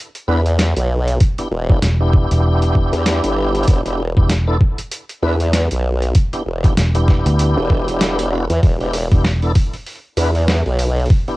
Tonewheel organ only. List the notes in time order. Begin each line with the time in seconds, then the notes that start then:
0.28 B3 D4 E4 B4
1.39 B3 D4 E4 G4
1.70 B3 D4 E4 G4
2.00 B3 D4 E4 G4
3.85 B3 D4 E4 G4
4.17 B3 D4 E4 G4
4.47 B3 D4 E4 A4
5.22 B3 D4 E4 B4
6.33 B3 D4 E4 G4
6.64 B3 D4 E4 G4
6.95 B3 D4 E4 G4
8.32 B3 D4 E4 F#4
8.81 B3 D4 E4 G4
9.11 B3 D4 E4 G4
9.42 B3 D4 E4 A4
10.17 B3 D4 E4 B4
11.28 B3 D4 E4 G4